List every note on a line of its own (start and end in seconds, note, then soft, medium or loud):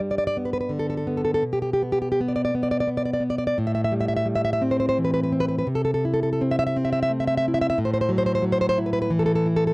0.00 1.38 G2 medium
0.00 1.07 G3 soft
0.11 0.17 D5 medium
0.18 0.26 D5 medium
0.27 0.36 D5 medium
0.37 1.06 B3 soft
0.45 0.52 B4 medium
0.53 0.59 B4 medium
0.61 0.71 B4 medium
0.69 1.41 D3 soft
0.79 0.89 A4 medium
0.90 0.96 A4 medium
0.97 1.07 A4 medium
1.07 1.42 B3 medium
1.17 1.23 A4 medium
1.25 1.33 A4 medium
1.34 1.43 A4 medium
1.42 3.54 B2 medium
1.53 1.61 G4 medium
1.62 1.71 G4 medium
1.73 1.81 G4 medium
1.82 2.19 B3 soft
1.92 2.00 G4 medium
2.02 2.10 G4 medium
2.12 2.19 G4 medium
2.21 2.54 B3 medium
2.28 2.35 D5 medium
2.36 2.44 D5 medium
2.45 2.54 D5 medium
2.55 2.86 B3 soft
2.63 2.70 D5 medium
2.71 2.79 D5 medium
2.80 2.89 D5 medium
2.87 3.19 B3 soft
2.97 3.04 D5 medium
3.05 3.12 D5 medium
3.13 3.22 D5 medium
3.20 3.57 B3 medium
3.30 3.37 D5 medium
3.38 3.46 D5 medium
3.47 3.57 D5 medium
3.58 5.62 A2 medium
3.67 3.74 E5 medium
3.75 3.83 E5 medium
3.84 3.93 E5 medium
3.92 4.24 G3 medium
4.01 4.07 E5 medium
4.08 4.15 E5 medium
4.17 4.27 E5 medium
4.26 5.30 G3 medium
4.36 4.43 E5 medium
4.45 4.52 E5 medium
4.53 4.62 E5 loud
4.62 5.31 C4 soft
4.71 4.79 C5 medium
4.80 4.88 C5 medium
4.89 4.97 C5 medium
4.98 5.66 E3 medium
5.05 5.13 B4 medium
5.14 5.22 B4 medium
5.23 5.32 B4 medium
5.32 5.67 C4 medium
5.40 5.47 B4 medium
5.48 5.57 B4 medium
5.59 5.67 B4 medium
5.67 7.74 C3 medium
5.75 5.84 A4 medium
5.85 5.93 A4 medium
5.94 6.04 A4 medium
6.05 7.12 E4 medium
6.14 6.22 A4 medium
6.23 6.32 A4 medium
6.33 6.42 A4 medium
6.41 6.75 C4 medium
6.51 6.58 E5 medium
6.59 6.65 E5 loud
6.67 6.76 E5 loud
6.76 7.78 C4 medium
6.85 6.91 E5 medium
6.93 7.01 E5 loud
7.03 7.11 E5 loud
7.10 7.77 A3 medium
7.20 7.26 E5 medium
7.27 7.36 E5 medium
7.37 7.45 E5 medium
7.48 7.79 E4 medium
7.54 7.60 E5 medium
7.61 7.69 E5 medium
7.70 7.78 E5 loud
7.78 9.74 A2 medium
7.85 7.92 C5 medium
7.94 8.00 C5 medium
8.01 8.10 C5 medium
8.09 8.41 F#3 medium
8.18 8.25 C5 medium
8.26 8.34 C5 medium
8.35 8.44 C5 loud
8.42 9.10 F#3 medium
8.52 8.60 C5 medium
8.61 8.68 C5 loud
8.69 8.78 C5 loud
8.78 9.45 E4 medium
8.86 8.92 B4 medium
8.93 9.01 B4 medium
9.02 9.11 B4 loud
9.10 9.74 E3 medium
9.19 9.25 A4 medium
9.26 9.34 A4 medium
9.35 9.47 A4 medium
9.46 9.74 E4 medium
9.56 9.66 A4 loud
9.67 9.74 A4 medium